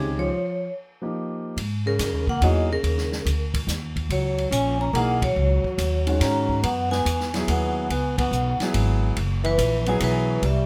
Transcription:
Already playing: C#2 C3 D#3 G#3 C#4 G4 G#4
0.18 F3 C#5
1.02 F3 A#3 D#4 G4
1.57 G#2, ride
1.86 C#3 A#4
1.99 F#2, snare, hi-hat pedal, ride
2.13 D#2
2.27 C#2 A#3 F#5, kick
2.41 E2 E3 F#3 A#3 D#4 G#4 D#5, ride
2.72 C#3 A#4
2.83 D#2, ride
2.98 snare
3.12 snare
3.25 D2, hi-hat pedal, ride
3.54 kick, ride
3.67 D#2, snare, hi-hat pedal
3.96 kick, ride
4.09 C#2 F#3 C#5, ride
4.38 ride
4.51 A#1 C#4 G#5, hi-hat pedal, ride
4.79 C#4 A#5
4.93 B1 E3 A#3 D#4 G#4 F#5, ride
5.21 F#3 C#5, kick, ride
5.36 C#2
5.64 muted upright bass stroke, kick
5.78 D#2, hi-hat pedal, ride
6.07 D#3 G#3 C#4 F#4, ride
6.19 G#2 C#4 A#5, snare, ride
6.49 kick
6.62 F#2 B3 F#5, ride
6.91 B3 G#5, snare
7.05 E2, hi-hat pedal, ride
7.20 snare
7.34 F#3 B3 E4 G#4, snare, ride
7.48 D#2 B3 F#5, ride
7.89 C#2 B3 G#5, ride
8.18 B3 F#5, kick, ride
8.31 B1, hi-hat pedal
8.59 F#3 B3 E4 G#4, muted upright bass stroke, snare, ride
8.74 G#1, ride
9.16 F#1, ride
9.44 E3 B4, ride
9.58 A#1, hi-hat pedal, ride
9.86 F#3 B3 E4 G#4 G#5, ride
10.00 B1 E3 B4, ride
10.42 C2 G3 E5, ride

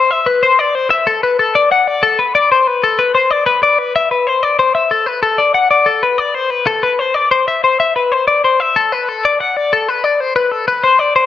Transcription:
Already playing: C5
0.11 E5
0.26 B4
0.43 C5
0.59 D5
0.75 C5
0.91 E5
1.07 A4
1.23 B4
1.39 A4
1.55 D5
1.72 F#5
1.88 D5
2.03 A4
2.19 B4
2.35 D5
2.52 C5
2.67 B4
2.84 A4
2.99 B4
3.15 C5
3.31 D5
3.46 B4
3.63 D5
3.79 B4
3.96 E5
4.11 B4
4.27 C5
4.43 D5
4.59 C5
4.75 E5
4.91 A4
5.06 B4
5.23 A4
5.38 D5
5.54 F#5
5.71 D5
5.86 A4
6.03 B4
6.18 D5
6.35 C5
6.50 B4
6.67 A4
6.83 B4
6.99 C5
7.14 D5
7.31 C5
7.48 E5
7.64 C5
7.80 E5
7.96 B4
8.12 C5
8.28 D5
8.44 C5
8.60 E5
8.76 A4
8.92 B4
9.09 A4
9.25 D5
9.40 F#5
9.57 D5
9.73 A4
9.88 B4
10.04 D5
10.20 C5
10.36 B4
10.52 A4
10.68 B4
10.84 C5
10.99 D5
11.16 C5

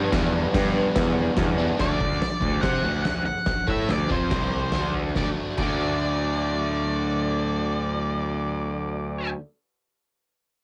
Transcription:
Already playing: D3 G3 B3 D4
0.11 E2 G2 D3 G3, kick, snare, crash
0.15 B3 D4
0.54 G2, kick, snare, crash
0.96 E2, kick, snare, crash
1.37 E2, kick, snare, crash
1.58 D3 G3 B3 D4
1.63 G2
1.77 D2 D3 A3 D4 D5, kick, snare, floor tom
2.00 D2 D3 A3, kick, floor tom
2.22 snare, floor tom
2.41 D2 D3 A3, kick, floor tom
2.61 C3 C4 G4 C5 F#5, kick, snare, floor tom
2.82 D2 D3 A3 D4, floor tom
3.04 D2 D3 A3, snare, floor tom
3.25 F#5, muted overdriven electric guitar stroke, muted picked electric bass stroke, floor tom
3.46 muted overdriven electric guitar stroke, muted picked electric bass stroke, kick, snare, floor tom
3.67 A2 A3 E4 A4 E5, kick, floor tom
3.89 D2 D3 A3 D5, snare, floor tom
4.09 F2 F3 C4 F4 C5, kick, floor tom
4.30 C2 C3 G3 C4, kick, snare, floor tom
4.52 floor tom
4.72 D2 D3 A3 D4, snare, floor tom
4.94 floor tom
5.15 D2 D3 F#3 A3 D4 D5, kick, snare
5.57 D2 D3 F#3 D5, kick, crash
5.62 A3 D4

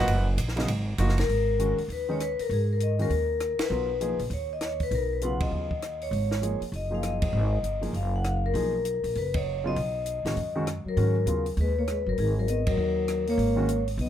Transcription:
0.00 B4 D#5 F#5
0.07 F#1, ride
0.37 A#1, hi-hat pedal, ride
0.48 snare
0.56 C#3 F#3 B3 D#4, snare, ride
0.68 G#1, ride
0.98 F#1 F3 A#3 D#4 F#4, hi-hat pedal, ride
1.09 snare
1.18 A#4, snare, ride
1.29 G#1, open hi-hat
1.59 D#3 G#3 C#4 F#4, closed hi-hat
1.78 muted upright bass stroke, open hi-hat
1.88 D#2, open hi-hat
1.92 B4
2.09 D#3 G#3 C#4 D#4 C#5
2.20 B4, cross-stick, closed hi-hat
2.39 A#4, muted upright bass stroke, open hi-hat
2.49 G#2 G#4, open hi-hat
2.73 A#4
2.80 D#5, closed hi-hat
2.99 D#3 G#3 C#4 F#4 A#4, open hi-hat
3.10 D#2, open hi-hat
3.40 cross-stick, closed hi-hat
3.59 B4, muted upright bass stroke, snare, ride
3.70 B1 F#3 B3 F4 A#4
4.01 F3 A#3 D#4 G#4, closed hi-hat
4.19 A#1, open hi-hat
4.30 D#2 C#5, open hi-hat
4.53 D#5
4.61 C#5, cross-stick, snare, closed hi-hat
4.80 B4, kick, open hi-hat
4.91 B1 A#4, open hi-hat
5.13 B4
5.21 C#3 F#3 B3 F4 F#5, closed hi-hat
5.40 D#5, kick, ride
5.51 D#2
5.71 kick
5.82 cross-stick, closed hi-hat
6.01 C#5, open hi-hat
6.11 G#1, open hi-hat
6.31 snare
6.42 F3 A#3 D#4 G#4, closed hi-hat
6.61 muted upright bass stroke, open hi-hat
6.72 F#1 D#5, open hi-hat
6.91 F3 A#3 D#4 G#4 F5
7.03 D#5, cross-stick, closed hi-hat
7.22 D#5, kick, ride
7.33 G#1
7.63 G1, closed hi-hat
7.81 F3 A#3 D#4 G#4, open hi-hat
7.93 F#1 F5, open hi-hat
8.16 F#5
8.24 F5, cross-stick, closed hi-hat
8.46 A#4
8.54 B1 F3 A#3 D#4 G#4, open hi-hat
8.85 closed hi-hat
9.04 A#1, open hi-hat
9.15 F#1 B4, open hi-hat
9.34 C#5, kick, ride
9.64 C#3 F#3 B3 F4 D#5
9.76 B1, open hi-hat
10.06 closed hi-hat
10.25 A1 D#3 G#3 C#4 F#4, snare, open hi-hat
10.36 F#2, open hi-hat
10.55 D#3 G#3 C#4 F#4
10.67 cross-stick, closed hi-hat
10.85 F#3 A#4, muted upright bass stroke
10.97 G#2 D#3 G#3 C#4 F#4, open hi-hat
11.26 D#2 C#3 F#3 B3 F4, closed hi-hat
11.46 open hi-hat
11.57 D#2 G#3 B4, open hi-hat
11.79 A#3 C#5
11.87 G#3 B4, cross-stick, closed hi-hat
12.06 G1 F#3 A#4
12.18 G#1 D#3 G#4, open hi-hat
12.38 F#3 A#4
12.48 B3 D#5, closed hi-hat
12.67 F#3 A#4, kick, ride
12.77 D#2
13.08 cross-stick, closed hi-hat
13.27 A#3 C#5, open hi-hat
13.38 G#1, open hi-hat
13.56 D#3 G#3 C#4 F#4
13.69 closed hi-hat
13.88 open hi-hat
13.97 B1 B3 D#5, open hi-hat

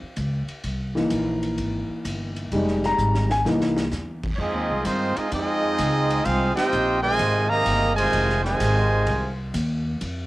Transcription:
0.02 muted upright bass stroke
0.16 C#2, kick, hi-hat pedal, ride
0.48 muted upright bass stroke, ride
0.64 C2, kick, ride
0.95 E3 A#3 D#4, snare
1.10 A#1, kick, hi-hat pedal, ride
1.43 ride
1.58 G#1, kick, ride
1.89 muted upright bass stroke
2.05 G1, kick, hi-hat pedal, ride
2.36 ride
2.52 F1 G3 G#3 D#4, kick, ride
2.68 snare
2.83 A#5, snare
2.98 G#1, hi-hat pedal
3.14 snare
3.30 G#5, snare
3.44 C2 E3 A#3 D#4, snare
3.61 snare
3.77 snare
3.91 E2, snare, hi-hat pedal
4.23 kick, crash
4.36 F2 G#3 C4 D#4 C#5 D#5, kick
4.40 C4 F4 G#4
4.54 D#2
4.69 C2
4.84 G2 D#3 G#3 C4 D#4 F4 C5, kick, hi-hat pedal, ride
5.16 G#3 C4 D#4 F4 G#4 D#5, muted upright bass stroke, ride
5.30 F2 G#3 C4 D#4 F4 G#4 D#5, kick, ride
5.78 C#2, kick, hi-hat pedal, ride
6.10 ride
6.24 C2 G#3 C4 D#4 F4 G#4 C5 F5, kick, ride
6.54 C4 D#4 F4 G4 C5 D#5 G5, snare, ride
6.72 A#1, hi-hat pedal
7.01 C3 D#3 G#3 F4 C5 D#5 G#5
7.19 G#1, kick, ride
7.49 C3 D#3 A#3 G#4 D#5 F5 A#5
7.66 G1, kick, hi-hat pedal, ride
7.95 C3 D#3 G#3 F4 C5 D#5 G#5, ride
8.13 F1, kick, ride
8.29 snare
8.44 C3 D#3 G#3 F4 C5 D#5 G#5, snare
8.60 G#1, kick, hi-hat pedal, ride
9.07 C2, kick, ride
9.54 D#2, kick, hi-hat pedal, ride
10.01 F2, kick, ride

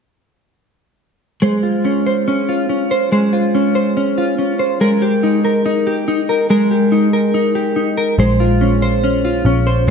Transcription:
1.42 G#3 C5
1.63 F4
1.85 C#4
2.06 C5
2.28 C#4
2.49 F4
2.69 C#4
2.91 C5
3.12 G#3 C5
3.33 F4
3.55 C#4
3.75 C5
3.97 C#4
4.18 F4
4.38 C#4
4.59 C5
4.81 G#3 A#4
5.02 G4
5.23 D#4
5.45 A#4
5.66 D#4
5.87 G4
6.08 D#4
6.29 A#4
6.50 G#3 A#4
6.71 G4
6.92 D#4
7.13 A#4
7.34 D#4
7.55 G4
7.76 D#4
7.97 A#4
8.18 A#1 G#3 C5
8.40 F4
8.61 C#4
8.82 C5
9.04 C#4
9.25 F4
9.45 A#1 C#4
9.67 C5

